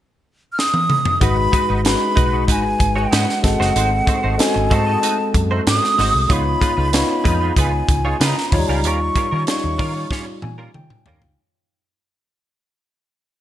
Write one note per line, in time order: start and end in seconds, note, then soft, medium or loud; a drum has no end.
0.52 0.60 F6 medium
0.59 1.21 D#6 loud
0.59 snare medium
0.74 high tom medium
0.90 mid tom medium
1.05 floor tom medium
1.20 1.46 G#1 medium
1.20 1.71 G#3 medium
1.20 1.35 G#3 medium
1.20 1.71 D#4 medium
1.20 1.36 D#4 medium
1.20 1.72 F#4 medium
1.20 1.36 F#4 medium
1.20 1.72 B4 medium
1.20 1.36 B4 medium
1.20 1.81 B5 loud
1.20 kick medium
1.20 closed hi-hat medium
1.37 muted clean electric guitar stroke soft
1.52 1.63 G#3 medium
1.52 1.64 D#4 medium
1.52 1.64 F#4 medium
1.52 1.64 B4 medium
1.52 kick medium
1.52 closed hi-hat medium
1.69 1.94 G#1 medium
1.69 1.80 G#3 soft
1.69 1.80 D#4 medium
1.69 1.80 F#4 soft
1.69 1.80 B4 medium
1.85 2.86 G#3 medium
1.85 2.86 D#4 medium
1.85 2.86 F#4 medium
1.85 2.86 B4 medium
1.85 2.45 B5 loud
1.85 muted clean electric guitar stroke soft
1.85 snare loud
1.85 closed hi-hat medium
1.99 muted clean electric guitar stroke soft
2.15 2.49 B1 medium
2.15 2.30 G#3 medium
2.15 2.30 D#4 medium
2.15 2.30 F#4 medium
2.15 2.30 B4 medium
2.15 kick medium
2.15 closed hi-hat medium
2.31 2.44 G#3 soft
2.31 2.43 D#4 soft
2.31 2.43 F#4 medium
2.31 2.43 B4 medium
2.47 2.73 G#1 medium
2.47 2.62 G#3 medium
2.47 2.62 D#4 medium
2.47 2.62 F#4 medium
2.47 2.62 B4 medium
2.47 3.00 G#5 medium
2.47 kick medium
2.47 closed hi-hat medium
2.64 muted clean electric guitar stroke soft
2.79 3.05 G#1 medium
2.79 muted clean electric guitar stroke soft
2.79 kick medium
2.79 closed hi-hat medium
2.95 3.08 G#3 soft
2.95 3.07 D#4 soft
2.95 3.07 F#4 medium
2.95 3.07 C#5 medium
2.95 3.45 F#5 medium
3.11 3.25 G#2 medium
3.11 3.25 G#3 medium
3.11 3.26 D#4 medium
3.11 3.26 F#4 medium
3.11 3.26 B4 medium
3.11 snare loud
3.11 closed hi-hat medium
3.28 muted clean electric guitar stroke soft
3.28 snare soft
3.43 3.56 G#1 medium
3.43 4.19 G#3 medium
3.43 4.20 C4 medium
3.43 4.20 F#4 medium
3.43 4.20 A4 medium
3.43 4.42 F#5 loud
3.43 muted clean electric guitar stroke soft
3.43 kick medium
3.43 snare soft
3.43 closed hi-hat medium
3.60 3.72 F#1 medium
3.60 3.71 A3 medium
3.60 3.71 D#4 medium
3.60 3.71 F#4 medium
3.60 3.71 C5 medium
3.60 snare soft
3.75 4.00 G#1 medium
3.75 3.89 A3 medium
3.75 3.90 D#4 medium
3.75 3.90 F#4 medium
3.75 3.90 C5 medium
3.75 closed hi-hat medium
3.92 muted clean electric guitar stroke soft
4.06 4.18 A3 medium
4.06 4.18 D#4 medium
4.06 4.19 F#4 medium
4.06 4.19 C5 medium
4.06 kick medium
4.06 closed hi-hat medium
4.23 4.36 G#1 medium
4.23 4.35 A3 soft
4.23 4.35 D#4 medium
4.23 4.34 F#4 medium
4.23 4.34 C5 medium
4.38 5.39 G#3 medium
4.38 5.39 C4 medium
4.38 5.40 F#4 medium
4.38 5.40 A4 medium
4.38 4.75 G#5 medium
4.38 muted clean electric guitar stroke soft
4.38 snare loud
4.38 closed hi-hat medium
4.54 4.67 G#1 medium
4.54 muted clean electric guitar stroke soft
4.70 4.95 G#2 medium
4.70 4.84 A3 medium
4.70 4.85 D#4 medium
4.70 4.85 F#4 medium
4.70 4.85 C5 medium
4.70 5.41 A5 medium
4.70 kick medium
4.70 closed hi-hat medium
4.86 4.98 A3 soft
4.86 4.98 D#4 medium
4.86 4.98 F#4 medium
4.86 4.97 D#5 medium
5.02 5.16 A3 medium
5.02 5.16 D#4 medium
5.02 5.17 F#4 medium
5.02 5.17 D#5 medium
5.02 closed hi-hat medium
5.18 muted clean electric guitar stroke soft
5.34 5.59 F#2 medium
5.34 muted clean electric guitar stroke soft
5.34 kick medium
5.34 closed hi-hat medium
5.51 5.62 A3 soft
5.51 5.62 D#4 soft
5.51 5.62 F#4 medium
5.51 5.61 C5 medium
5.67 5.79 G#2 medium
5.67 6.34 D#6 loud
5.67 muted clean electric guitar stroke soft
5.67 snare loud
5.67 closed hi-hat medium
5.83 muted clean electric guitar stroke soft
5.83 snare soft
5.98 6.10 G#1 medium
5.98 6.12 A3 medium
5.98 6.12 D#4 medium
5.98 6.13 F#4 medium
5.98 6.13 C5 medium
5.98 snare soft
5.98 open hi-hat medium
6.14 6.26 C2 medium
6.14 muted clean electric guitar stroke soft
6.29 6.54 C#2 loud
6.29 6.43 G#3 medium
6.29 6.80 B3 medium
6.29 6.80 D#4 medium
6.29 6.44 D#4 medium
6.29 6.80 F4 medium
6.29 6.44 F4 medium
6.29 6.44 B4 medium
6.29 6.80 C#5 medium
6.29 6.95 B5 medium
6.29 kick loud
6.29 closed hi-hat medium
6.46 muted clean electric guitar stroke soft
6.61 6.72 G#3 medium
6.61 6.72 D#4 medium
6.61 6.73 F4 medium
6.61 6.73 B4 medium
6.61 kick medium
6.61 closed hi-hat medium
6.77 7.02 C#2 medium
6.77 6.89 G#3 soft
6.77 6.88 D#4 soft
6.77 6.88 F4 medium
6.77 6.88 B4 medium
6.92 7.94 B3 medium
6.92 7.94 D#4 medium
6.92 7.94 F4 medium
6.92 7.94 C#5 medium
6.92 7.54 B5 medium
6.92 muted clean electric guitar stroke soft
6.92 snare loud
6.92 closed hi-hat medium
7.08 muted clean electric guitar stroke soft
7.24 7.50 F2 medium
7.24 7.38 G#3 medium
7.24 7.38 D#4 medium
7.24 7.39 F4 medium
7.24 7.39 B4 medium
7.24 kick medium
7.24 closed hi-hat medium
7.40 7.52 G#3 soft
7.40 7.52 D#4 medium
7.40 7.52 F4 medium
7.40 7.51 B4 medium
7.57 7.81 C#2 medium
7.57 7.70 G#3 medium
7.57 7.71 D#4 medium
7.57 7.71 F4 medium
7.57 7.71 B4 medium
7.57 8.26 G#5 medium
7.57 kick medium
7.57 closed hi-hat medium
7.73 muted clean electric guitar stroke soft
7.89 8.13 C#2 medium
7.89 muted clean electric guitar stroke soft
7.89 kick medium
7.89 closed hi-hat medium
8.05 8.16 G#3 medium
8.05 8.16 D#4 medium
8.05 8.16 F4 medium
8.05 8.15 C#5 medium
8.20 8.32 C#3 medium
8.20 8.34 G#3 medium
8.20 8.34 D#4 medium
8.20 8.35 F4 medium
8.20 8.35 B4 medium
8.20 snare loud
8.20 closed hi-hat medium
8.24 8.51 A#5 medium
8.37 muted clean electric guitar stroke soft
8.37 snare soft
8.49 8.64 D#2 medium
8.49 8.58 F3 medium
8.49 9.28 D#4 medium
8.49 9.28 F4 medium
8.49 9.29 C#5 medium
8.49 8.61 B5 medium
8.49 muted clean electric guitar stroke soft
8.49 kick medium
8.49 open hi-hat medium
8.58 9.31 G3 medium
8.58 8.69 A#5 medium
8.68 8.85 C#2 medium
8.68 8.80 G3 soft
8.68 8.80 C#4 medium
8.68 8.80 F4 medium
8.68 8.79 A#4 medium
8.68 8.78 G#5 medium
8.77 8.89 A#5 medium
8.84 9.09 D#2 medium
8.84 8.98 G3 medium
8.84 8.99 C#4 medium
8.84 8.99 F4 medium
8.84 8.99 A#4 medium
8.84 9.48 C#6 medium
8.84 closed hi-hat medium
9.16 9.26 G3 medium
9.16 9.27 C#4 medium
9.16 9.27 F4 medium
9.16 9.27 A#4 medium
9.16 kick medium
9.16 closed hi-hat medium
9.31 9.44 D#3 medium
9.31 9.43 G3 medium
9.31 9.43 C#4 medium
9.31 9.43 F4 medium
9.31 9.42 A#4 medium
9.47 10.48 G3 medium
9.47 10.48 D#4 medium
9.47 10.48 F4 medium
9.47 10.48 C#5 medium
9.47 10.08 C#6 medium
9.47 muted clean electric guitar stroke soft
9.47 snare loud
9.47 closed hi-hat medium
9.63 9.76 D#2 medium
9.63 muted clean electric guitar stroke soft
9.78 10.04 D#3 medium
9.78 9.93 G3 medium
9.78 9.93 C#4 medium
9.78 9.93 F4 medium
9.78 9.94 A#4 medium
9.78 kick medium
9.78 open hi-hat medium
9.94 10.06 G3 soft
9.94 10.06 C#4 medium
9.94 10.06 F4 medium
9.94 10.05 C#5 medium
10.10 10.24 G3 medium
10.10 10.25 C#4 medium
10.10 10.25 F4 medium
10.10 10.25 C#5 medium
10.10 kick medium
10.10 snare medium
10.26 muted clean electric guitar stroke soft
10.42 10.67 A#2 medium
10.42 10.72 G#5 medium
10.42 muted clean electric guitar stroke soft
10.42 high tom medium
10.58 10.70 G3 soft
10.58 10.70 C#4 medium
10.58 10.69 F4 medium
10.58 10.69 A#4 medium
10.74 10.87 D#3 medium
10.74 11.04 G5 medium
10.74 muted clean electric guitar stroke soft
10.74 mid tom medium
10.90 muted clean electric guitar stroke soft
10.90 mid tom medium
11.06 11.19 D#2 medium
11.06 11.20 G3 medium
11.06 11.21 C#4 medium
11.06 11.21 F4 medium
11.06 11.21 A#4 medium
11.06 11.36 F5 medium
11.06 floor tom medium
11.22 11.35 C#2 medium
11.22 muted clean electric guitar stroke soft
11.22 floor tom medium